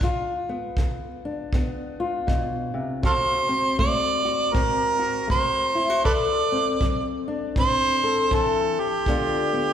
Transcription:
0.01 steel-string acoustic guitar G2 F4, kick
0.49 steel-string acoustic guitar B3
0.77 steel-string acoustic guitar D3, kick
1.25 steel-string acoustic guitar D4
1.53 steel-string acoustic guitar G2 B3, kick
2.00 steel-string acoustic guitar F4
2.27 steel-string acoustic guitar B2, kick
2.74 steel-string acoustic guitar C3
3.03 steel-string acoustic guitar D3 F#4, harmonica F4 A4 C5, kick
3.49 steel-string acoustic guitar C4
3.79 steel-string acoustic guitar A3, harmonica D5, kick
4.25 steel-string acoustic guitar F#4
4.53 steel-string acoustic guitar A2 C4, harmonica A#4, kick
4.99 steel-string acoustic guitar F#4
5.27 steel-string acoustic guitar A3, harmonica C5, kick
5.75 steel-string acoustic guitar E4
5.90 steel-string acoustic guitar F#4
6.05 steel-string acoustic guitar D3 A4, harmonica A4 B4 D5, kick
6.52 steel-string acoustic guitar C4
6.81 steel-string acoustic guitar F#3, kick
7.28 steel-string acoustic guitar D4
7.56 steel-string acoustic guitar A2 C4, harmonica C5, kick
8.04 steel-string acoustic guitar A4
8.31 steel-string acoustic guitar E3, harmonica A4, kick
8.80 harmonica G4
9.06 steel-string acoustic guitar G2 D3 B3 D4 F4, kick
9.53 steel-string acoustic guitar B3

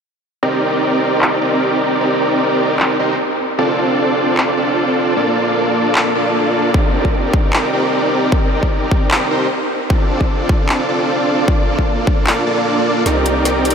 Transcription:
0.43 supersaw synth C4 D#4 G4 A#4 D5
1.22 clap
1.41 supersaw synth C4 D#4 G4 A#4 D5
2.01 supersaw synth C4 D#4 G4 A#4 D5
2.80 clap
2.99 supersaw synth C4 D#4 G4 A#4 C5
3.59 supersaw synth C4 D4 F4 A4 D5
4.38 clap
4.57 supersaw synth C4 D4 F4 A4 D5
5.16 supersaw synth A#3 D4 F4 A4 D5
5.95 clap
6.15 supersaw synth A#3 D4 F4 A4 D5
6.74 supersaw synth C4 D#4 G4 A#4 D5, kick
7.05 kick
7.33 kick
7.53 clap
7.73 supersaw synth C4 D#4 G4 A#4 D5
8.32 supersaw synth C4 D#4 G4 A#4 D5, kick
8.63 kick
8.91 kick
9.11 clap
9.31 supersaw synth C4 D#4 G4 A#4 C5
9.90 supersaw synth C4 D4 F4 A4 D5, kick
10.21 kick
10.49 kick
10.69 clap
10.89 supersaw synth C4 D4 F4 A4 D5
11.48 supersaw synth A#3 D4 F4 A4 D5, kick
11.79 kick
12.07 kick
12.27 clap
12.47 supersaw synth A#3 D4 F4 A4 D5
13.06 808-style bass C2, supersaw synth C4 D#4 G4 A#4 D5, snare, closed hi-hat
13.26 closed hi-hat
13.45 snare, closed hi-hat
13.65 closed hi-hat
13.70 closed hi-hat

